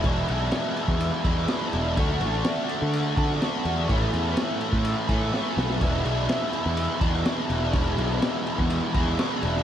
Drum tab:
RD |x-x-x-x-x-x-x-x-|x-x-x-x-x-x-x-x-|x-x-x-x-x-x-----|x-x-x-x-x-x-x-x-|
SD |----o-------oo--|----o-----ooo---|----o-------o-oo|----o-------o---|
BD |o------o--o-----|o---------o-----|o------o--o-----|o---------o-----|

RD |x-x-x-x-x-x-x-x-|
SD |----o-------o--o|
BD |o------o--o-----|